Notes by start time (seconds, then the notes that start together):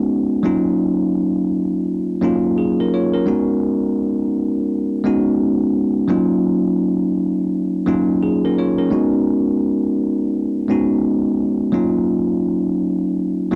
Already playing: G#3 B3 C#4 D#4 F#4
0.43 F#3 A#3 C#4 D#4 F4
2.21 F#3 A#3 C#4 D#4 F4
2.58 G#4
2.80 C#4 A#4
2.94 F4 C#5
3.14 C#4 A#4
3.26 G#3 B3 C#4 D#4 F#4
5.04 G#3 B3 C#4 D#4 F#4
6.08 F#3 A#3 C#4 D#4 F4
7.86 F#3 A#3 C#4 D#4 F4
8.23 G#4
8.45 C#4 A#4
8.58 F4 C#5
8.78 C#4 A#4
8.90 G#3 B3 C#4 D#4 F#4
10.68 G#3 B3 C#4 D#4 F#4
11.72 F#3 A#3 C#4 D#4 F4
13.51 F#3 A#3 C#4